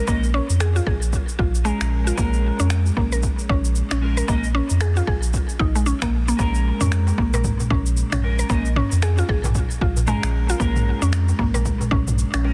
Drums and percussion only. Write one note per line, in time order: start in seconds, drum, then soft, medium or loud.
0.08 kick loud
0.08 cabasa medium
0.23 cabasa soft
0.50 cabasa medium
0.60 finger snap medium
0.60 cabasa medium
0.76 cabasa soft
0.87 kick loud
1.02 cabasa medium
1.13 kick medium
1.13 cabasa medium
1.29 cabasa soft
1.39 kick loud
1.55 cabasa medium
1.65 cabasa soft
1.81 finger snap medium
1.81 cabasa soft
2.07 cabasa medium
2.18 kick loud
2.18 cabasa medium
2.33 cabasa soft
2.60 cabasa medium
2.70 finger snap medium
2.70 cabasa medium
2.86 cabasa soft
2.97 kick loud
3.12 cabasa medium
3.23 kick medium
3.23 cabasa medium
3.39 cabasa soft
3.50 kick loud
3.65 cabasa medium
3.75 cabasa soft
3.91 finger snap medium
3.91 cabasa soft
4.18 cabasa medium
4.28 kick loud
4.28 cabasa medium
4.44 cabasa soft
4.70 cabasa medium
4.81 finger snap medium
4.81 cabasa medium
4.96 cabasa soft
5.07 kick loud
5.23 cabasa medium
5.33 kick medium
5.33 cabasa medium
5.49 cabasa soft
5.60 kick loud
5.76 cabasa medium
5.86 cabasa soft
6.02 finger snap medium
6.02 kick medium
6.02 cabasa soft
6.28 cabasa medium
6.39 kick loud
6.39 cabasa medium
6.55 cabasa soft
6.80 mid tom medium
6.80 darbuka ka medium
6.80 cabasa medium
6.92 finger snap medium
6.92 cabasa soft
7.07 darbuka tek medium
7.07 cabasa soft
7.18 kick medium
7.18 darbuka ka soft
7.34 darbuka tek medium
7.34 darbuka dum loud
7.34 cabasa medium
7.44 kick medium
7.44 mid tom medium
7.44 cabasa medium
7.60 darbuka ka medium
7.60 darbuka dum medium
7.60 cabasa soft
7.70 kick loud
7.70 darbuka tek soft
7.70 darbuka dum medium
7.86 cabasa medium
7.97 cabasa soft
8.13 finger snap medium
8.13 mid tom medium
8.13 darbuka ka soft
8.13 cabasa soft
8.24 darbuka tek medium
8.39 cabasa medium
8.50 kick loud
8.50 cabasa soft
8.65 cabasa soft
8.76 mid tom medium
8.76 darbuka tek soft
8.92 darbuka ka soft
8.92 cabasa medium
9.02 finger snap medium
9.02 cabasa soft
9.18 darbuka tek medium
9.18 cabasa soft
9.29 kick loud
9.29 darbuka ka soft
9.44 mid tom medium
9.44 darbuka tek medium
9.44 darbuka dum medium
9.44 cabasa medium
9.55 kick medium
9.55 cabasa medium
9.71 cabasa soft
9.81 kick loud
9.97 darbuka dum medium
9.97 cabasa medium
10.07 mid tom medium
10.07 cabasa soft
10.23 finger snap medium
10.23 cabasa soft
10.49 cabasa medium
10.60 kick loud
10.60 cabasa soft
10.76 mid tom medium
10.76 cabasa soft
11.02 darbuka ka soft
11.02 cabasa medium
11.13 finger snap medium
11.13 cabasa soft
11.29 darbuka tek medium
11.29 cabasa soft
11.39 kick medium
11.39 mid tom medium
11.39 darbuka ka medium
11.55 darbuka tek medium
11.55 darbuka dum medium
11.55 cabasa medium
11.65 kick medium
11.65 cabasa medium
11.81 darbuka ka medium
11.81 darbuka dum medium
11.81 cabasa soft
11.91 kick loud
11.91 darbuka tek soft
11.91 darbuka dum medium
12.08 mid tom medium
12.08 cabasa medium
12.18 cabasa soft
12.34 finger snap medium
12.34 darbuka ka medium
12.34 cabasa soft
12.45 darbuka tek medium